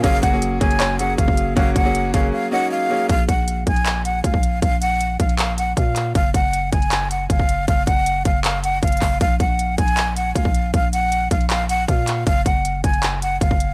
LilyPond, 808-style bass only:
\new Staff \with { instrumentName = "808-style bass" } { \clef bass \time 4/4 \key ges \lydian \tempo 4 = 157 ges,,8 ges,,4 ges,,4. ges,,16 ges,,8. | ges,,8 ges,,4 ges,,8 r2 | bes,,8 bes,,4 bes,,4. des,16 bes,,8. | bes,,4. bes,,4. bes,4 |
ges,,8 ges,,4 ges,,4. ges,,4 | ges,,8 ges,,4 ges,,4. ges,,8 ges,,8 | bes,,8 bes,,4 bes,,4. des,16 bes,,8. | bes,,4. bes,,4. bes,4 |
ges,,8 ges,,4 ges,,4. ges,,16 ges,,8. | }